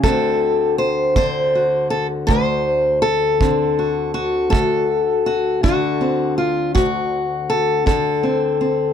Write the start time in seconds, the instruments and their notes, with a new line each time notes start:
0.04 steel-string acoustic guitar D2 D3 C4 F#4 A4, kick
0.78 steel-string acoustic guitar C5
1.16 steel-string acoustic guitar D3 C5, kick
1.55 steel-string acoustic guitar F#4
1.90 steel-string acoustic guitar A4
2.27 steel-string acoustic guitar D2 C5, kick
3.02 steel-string acoustic guitar A4
3.41 steel-string acoustic guitar D3 C4, kick
3.79 steel-string acoustic guitar F#4
4.14 steel-string acoustic guitar F#4
4.50 steel-string acoustic guitar D2 A4, kick
5.26 steel-string acoustic guitar F#4
5.63 steel-string acoustic guitar D3 F#4, kick
6.01 steel-string acoustic guitar C4
6.38 steel-string acoustic guitar F4
6.75 steel-string acoustic guitar D2 F#4, kick
7.50 steel-string acoustic guitar A4
7.86 steel-string acoustic guitar D3 A4, kick
8.23 steel-string acoustic guitar C4
8.61 steel-string acoustic guitar C4